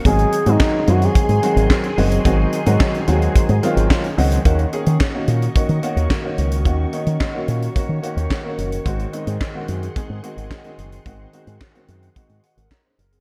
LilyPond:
<<
  \new Staff \with { instrumentName = "String machine" } { \time 4/4 \key ees \dorian \tempo 4 = 109 << { <aes' c'''>1~ | <aes' c'''>1 | <ges' des'''>1~ | <ges' des'''>1 |
<aes' c'''>1~ | <aes' c'''>1 | } \\ { aes''1~ | aes''1 | ees''1 | des''1 |
ges''1~ | ges''1 | } >> }
  \new Staff \with { instrumentName = "Analog synth lead" } { \time 4/4 \key ees \dorian aes'8. ees'8. ges'16 aes'4.~ aes'16 r8 | r1 | r1 | r1 |
r1 | r1 | }
  \new Staff \with { instrumentName = "Grand piano" } { \time 4/4 \key ees \dorian bes16 r2. r8. | r1 | r1 | r1 |
r1 | r2 r8 <ges' ees'' ges''>16 <bes' ges''>16 <ges' ees'' bes''>16 <ees' c''>16 bes'16 <c' aes'>16 | }
  \new Staff \with { instrumentName = "Grand piano" } { \time 4/4 \key ees \dorian <ees ges aes c' ges'>8 r16 <ees ges aes c' ges'>8 r16 <ees ges aes c' ges'>8. r16 <ees ges aes c' ges'>8. r16 <ees ges aes c' ges'>8 | <ees ges aes c' ges'>8 r16 <ees ges aes c' ges'>8 r16 <ees ges aes c' ges'>8. r16 <ees ges aes c' f'>8. r16 <ees ges aes c' ges'>8 | <ees bes des' ges'>8 <ees bes des' aes'>8 r16 <ees bes des' ges'>8 r16 <ees bes des' ges'>8 <ees bes des' ges'>8 r16 <ees bes des' ges'>8 r16 | <ees bes des' ges'>8 <ees bes des' ees'>8 r16 <ees bes des' ges'>8 r16 <ees bes des' ges'>8 <ees bes des' ges'>8 r16 <ees bes des' ges'>8 r16 |
<ees aes c' ges'>8 <ees aes c' ees'>8 r16 <ees aes c' ges'>8 r16 <ees aes c' aes'>8 <ees aes c' ges'>8 r16 <ees aes c' ges'>8 r16 | <ees aes c' ges'>8 <ees aes c' ges'>8 r16 <ees aes c' ges'>8 r16 <ees aes c' ges'>8 r4. | }
  \new Staff \with { instrumentName = "Fingered electric bass" } { \clef bass \time 4/4 \key ees \dorian aes,,8 r16 aes,16 r8 ges,8 r16 aes,16 r16 aes,,16 r8 ges,,8 | aes,,8 r16 aes,16 r8 ees,8 r16 aes,16 r16 aes,,16 r8 des,8 | ees,8 r16 ees16 r8 bes,8 r16 ees16 r16 ees,16 r8 des,8 | ees,8 r16 ees16 r8 bes,8 r16 ees16 r16 ees,16 r8 ges,,8 |
aes,,8 r16 aes,16 r8 ges,8 r16 aes,16 r16 aes,,16 r8 ges,,8 | aes,,8 r16 aes,16 r8 ges,8 r16 aes,16 r16 aes,,16 r8 ges,,8 | }
  \new DrumStaff \with { instrumentName = "Drums" } \drummode { \time 4/4 <hh bd>16 hh16 hh16 hh16 <hc bd sn>8 hh16 hh16 <hh bd>16 hh16 hh16 hh16 <hc bd sn>16 hh16 hho16 hh16 | <hh bd>8 hh16 hh16 <hc bd sn>16 hh16 hh16 hh16 <hh bd>16 hh16 hh16 hh16 <hc bd sn>16 hh16 hho16 hh16 | <hh bd>16 hh16 hh16 hh16 <hc bd sn>8 hh16 hh16 <hh bd>16 hh16 hh16 hh16 <hc bd sn>8 hh16 hh16 | <hh bd>8 hh16 hh16 <hc bd sn>8 hh16 hh16 <hh bd>8 hh16 hh16 <hc bd sn>8 hh16 hh16 |
<hh bd>16 hh16 hh16 hh16 <hc bd sn>8 hh16 hh16 <hh bd>8 hh16 hh16 <hc bd sn>16 hh16 hh16 hh16 | <hh bd>8 hh16 hh16 <hc bd sn>16 hh16 hh16 hh16 <hh bd>16 hh16 hh16 hh16 <hc bd sn>8 hh16 hh16 | }
>>